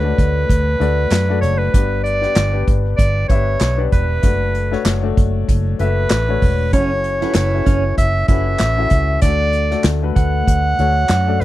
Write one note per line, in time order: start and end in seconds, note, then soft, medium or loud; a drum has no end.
0.00 0.12 D2 loud
0.00 0.14 D3 medium
0.00 0.03 A3 medium
0.00 0.75 A3 medium
0.00 0.03 D4 medium
0.00 0.75 D4 medium
0.00 0.04 F#4 medium
0.00 0.75 F#4 medium
0.00 0.05 A4 medium
0.00 1.41 B4 medium
0.00 1.75 C#5 medium
0.00 1.75 F#5 medium
0.05 0.76 A4 medium
0.05 0.76 D5 medium
0.18 0.44 D2 loud
0.18 kick loud
0.18 closed hi-hat medium
0.49 0.75 D2 loud
0.49 kick loud
0.49 closed hi-hat loud
0.80 1.06 D2 loud
0.80 1.25 A3 medium
0.80 1.25 D4 medium
0.80 1.25 F#4 medium
0.80 1.26 A4 medium
0.80 1.26 D5 loud
0.80 closed hi-hat medium
1.11 1.44 F#2 medium
1.11 snare loud
1.11 clap medium
1.11 clap loud
1.11 closed hi-hat medium
1.29 1.71 A3 medium
1.29 1.71 D4 medium
1.29 1.71 F#4 medium
1.29 1.71 A4 medium
1.29 1.72 D5 medium
1.41 1.68 F#1 loud
1.41 1.60 C#5 loud
1.41 closed hi-hat medium
1.58 2.03 B4 loud
1.73 2.25 G1 medium
1.73 2.63 G2 medium
1.73 2.18 B3 medium
1.73 2.19 D4 medium
1.73 2.19 G4 medium
1.73 2.19 B4 medium
1.73 2.19 D5 medium
1.73 kick loud
1.73 closed hi-hat loud
2.04 2.67 D5 loud
2.04 closed hi-hat medium
2.21 2.50 B3 medium
2.21 2.51 D4 medium
2.21 2.51 G4 medium
2.21 2.51 B4 medium
2.21 2.51 D5 medium
2.21 snare soft
2.36 2.62 G1 loud
2.36 snare loud
2.36 clap medium
2.36 closed hi-hat loud
2.52 3.24 B3 medium
2.52 3.25 D4 medium
2.52 3.25 G4 medium
2.52 3.25 B4 medium
2.52 3.25 D5 medium
2.67 2.93 G1 loud
2.67 kick loud
2.67 closed hi-hat medium
2.97 3.24 G1 loud
2.97 3.27 D5 loud
2.97 kick loud
2.97 closed hi-hat loud
3.28 3.55 G1 loud
3.28 3.74 B3 medium
3.28 3.75 D4 medium
3.28 3.75 G4 medium
3.28 3.75 B4 medium
3.28 3.87 C#5 medium
3.28 3.75 E5 medium
3.28 kick loud
3.28 closed hi-hat medium
3.60 3.86 B1 medium
3.60 snare loud
3.60 clap medium
3.60 closed hi-hat medium
3.77 4.20 B3 medium
3.77 4.20 D4 medium
3.77 4.20 G4 medium
3.77 4.20 B4 medium
3.77 4.21 D5 medium
3.92 4.18 E1 medium
3.92 5.13 B4 medium
3.92 kick medium
3.92 closed hi-hat medium
4.23 4.74 F#1 loud
4.23 4.68 A3 medium
4.23 4.68 D4 medium
4.23 4.68 F#4 medium
4.23 4.68 A4 medium
4.23 4.69 D5 medium
4.23 kick medium
4.23 closed hi-hat loud
4.55 closed hi-hat medium
4.72 5.00 A3 medium
4.72 5.01 D4 medium
4.72 5.01 F#4 medium
4.72 5.01 A4 medium
4.72 5.01 C#5 loud
4.72 snare soft
4.85 5.11 F#1 loud
4.85 snare loud
4.85 clap medium
4.85 clap loud
4.85 closed hi-hat loud
5.02 5.74 A3 medium
5.02 5.74 D4 medium
5.02 5.75 F#4 medium
5.02 5.75 A4 medium
5.02 5.75 D5 medium
5.17 5.43 F#1 loud
5.17 kick loud
5.17 closed hi-hat medium
5.48 5.74 F#1 loud
5.48 kick medium
5.48 closed hi-hat medium
5.79 6.05 F#1 medium
5.79 6.24 A3 medium
5.79 6.24 D4 medium
5.79 6.24 F#4 medium
5.79 6.25 A4 medium
5.79 6.69 B4 medium
5.79 6.25 E5 medium
5.79 closed hi-hat medium
6.10 6.36 A1 medium
6.10 snare loud
6.10 clap medium
6.10 clap loud
6.10 closed hi-hat medium
6.28 6.70 A3 medium
6.28 6.70 D4 medium
6.28 6.70 F#4 medium
6.28 6.71 A4 medium
6.28 6.71 C#5 medium
6.42 6.73 E1 medium
6.42 kick medium
6.42 open hi-hat medium
6.73 7.24 F#1 loud
6.73 6.90 C#4 medium
6.73 7.18 C#4 medium
6.73 7.18 E4 medium
6.73 7.18 F#4 medium
6.73 7.19 A4 medium
6.73 7.31 C#5 loud
6.73 7.19 C#5 medium
6.73 kick loud
6.73 closed hi-hat medium
7.04 closed hi-hat medium
7.21 7.50 C#4 medium
7.21 7.50 E4 medium
7.21 7.34 E4 medium
7.21 7.51 F#4 medium
7.21 7.51 A4 medium
7.21 7.51 B4 medium
7.21 snare soft
7.35 7.61 F#1 loud
7.35 7.65 E4 medium
7.35 7.94 C#5 loud
7.35 snare loud
7.35 clap medium
7.35 closed hi-hat loud
7.53 8.24 C#4 medium
7.53 8.24 E4 medium
7.53 8.25 F#4 medium
7.53 8.25 A4 medium
7.53 8.25 C#5 medium
7.66 7.92 F#1 medium
7.66 7.83 C#4 medium
7.66 kick loud
7.66 closed hi-hat medium
7.97 8.23 F#1 medium
7.97 8.27 E5 loud
7.97 kick medium
7.97 closed hi-hat loud
8.28 8.54 F#1 medium
8.28 8.74 C#4 medium
8.28 8.45 E4 medium
8.28 8.74 E4 medium
8.28 8.74 F#4 medium
8.28 8.75 A4 medium
8.28 8.75 B4 medium
8.28 9.18 E5 loud
8.28 kick loud
8.28 closed hi-hat medium
8.59 8.86 A1 medium
8.59 snare loud
8.59 clap medium
8.59 clap loud
8.59 closed hi-hat medium
8.77 9.19 C#4 medium
8.77 9.20 E4 medium
8.77 9.20 F#4 medium
8.77 9.20 A4 medium
8.77 9.20 E5 medium
8.90 9.17 C#2 medium
8.90 kick medium
8.90 closed hi-hat medium
9.21 9.74 D2 medium
9.21 10.13 D3 medium
9.21 9.68 A3 medium
9.21 9.68 D4 medium
9.21 9.68 F#4 medium
9.21 9.68 A4 medium
9.21 9.85 D5 loud
9.21 9.68 D5 medium
9.21 kick loud
9.21 closed hi-hat medium
9.53 closed hi-hat medium
9.71 10.00 A3 medium
9.71 10.00 D4 medium
9.71 10.00 F#4 medium
9.71 10.00 A4 medium
9.71 10.01 D5 medium
9.71 snare soft
9.84 10.10 D2 loud
9.84 snare loud
9.84 clap medium
9.84 closed hi-hat loud
10.03 10.74 A3 medium
10.03 10.74 D4 medium
10.03 10.74 F#4 medium
10.03 10.74 A4 medium
10.03 10.75 B4 medium
10.16 10.42 D2 loud
10.16 11.42 F#5 loud
10.16 kick loud
10.16 closed hi-hat medium
10.47 10.73 D2 loud
10.47 kick loud
10.47 closed hi-hat loud
10.79 11.04 D2 loud
10.79 11.24 A3 medium
10.79 11.24 D4 medium
10.79 11.24 F#4 medium
10.79 11.24 A4 medium
10.79 11.25 C#5 medium
10.79 closed hi-hat medium
11.09 11.42 F#2 medium
11.09 snare loud
11.09 clap medium
11.09 closed hi-hat medium
11.27 11.45 A3 medium
11.27 11.45 D4 medium
11.27 11.45 F#4 medium
11.27 11.45 A4 medium
11.27 11.45 D5 medium
11.40 11.45 F#1 medium
11.40 11.45 B4 medium
11.40 closed hi-hat medium